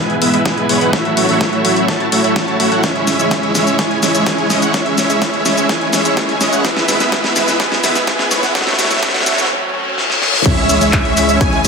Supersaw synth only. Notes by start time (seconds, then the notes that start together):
Already playing: G#3 B3 E4 B4 G#5
0.22 G#3 B3 E4 B4 E5
0.34 G#3 B3 E4 B4 E5
0.46 G#3 B3 E4 B4 G#5
0.69 G#3 B3 E4 B4 C#5
0.81 G#3 B3 E4 B4 F#5
0.93 A3 E4 F#4 C#5 E5
1.17 A3 E4 F#4 C#5 E5
1.29 A3 E4 F#4 C#5 E5
1.41 A3 E4
1.65 A3 E4 F#4 C#5 E5
1.88 A3 E4 F#4 C#5 A5
2.12 A3 E4 F#4 C#5 E5
2.24 A3 E4 F#4 C#5 E5
2.36 C#5
2.60 A3 E4 F#4 C#5 E5
2.72 A3 E4 F#4 C#5 F#5
2.84 G#3 C#4 E4
3.07 G#3 C#4 E4 C#5 E5
3.19 G#3 C#4 E4 C#5 E5
3.31 C#4 E4 C#5 E5
3.55 G#3 C#4 E4 C#5 E5
3.79 G#3 C#4 E4 C#5 G#5
4.02 G#3 C#4 E4 C#5 E5
4.14 G#3 C#4 E4 C#5 E5
4.26 G#3 C#4 E4 C#5 G#5
4.50 G#3 C#4 E4 C#5 D#5
4.62 G#3 C#4 E4 C#5 F#5
4.74 G#3 C#4 E4 C#5 E5
4.98 G#3 C#4 E4 C#5 E5
5.10 G#3 C#4 E4 C#5 E5
5.22 G#3 E4
5.45 G#3 C#4 E4 C#5 E5
5.69 G#3 C#4 E4 C#5 G#5
5.93 G#3 C#4 E4 C#5 E5
6.05 G#3 C#4 E4 C#5 E5
6.17 G#3 C#4 E4
6.41 G#3 C#4 E4 C#5 D#5
6.53 G#3 C#4 E4 C#5 F#5
6.64 G#3 B3 E4 B4 E5
6.88 G#3 B3 E4 B4 E5
7.00 G#3 B3 E4 B4 E5
7.12 G#3 B3 E4 B4
7.36 G#3 B3 E4 B4 E5
7.60 G#3 B3 E4 B4 G#5
7.84 G#3 B3 E4 B4 E5
7.95 G#3 B3 E4 B4 E5
8.07 G#3 B3 E4 B4 G#5
8.31 G#3 B3 E4 B4 C#5
8.43 G#3 B3 E4 B4 F#5
8.55 A3 E4 F#4 C#5 E5
8.79 A3 E4 F#4 C#5 E5
8.91 A3 E4 F#4 C#5 E5
9.03 A3 E4 F#4 C#5 E5
9.26 A3 E4 F#4 C#5 E5
10.45 G#3 C#4 E4 C#5 E5
10.69 G#3 C#4 E4 C#5 E5
10.81 G#3 C#4 E4 C#5 E5
10.93 G#3 C#4 E4 C#5
11.17 G#3 C#4 E4 C#5 E5
11.41 G#3 C#4 E4 C#5 G#5
11.65 G#3 C#4 E4 C#5 E5